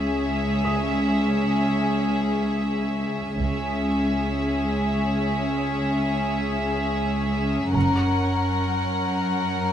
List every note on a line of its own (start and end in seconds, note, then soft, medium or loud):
0.00 3.35 C#2 soft
0.00 3.35 C#4 soft
0.00 3.36 G#4 soft
0.00 3.35 E5 soft
0.65 3.89 D#6 soft
3.39 7.71 C#2 soft
3.39 4.44 C#2 soft
3.39 7.72 C#4 soft
3.39 7.72 G#4 soft
3.39 7.71 E5 soft
7.74 8.80 F#1 soft
7.74 9.72 F#2 soft
7.74 9.72 C#4 soft
7.74 9.72 A#4 soft
7.74 9.72 F#5 soft
7.74 9.72 A#5 soft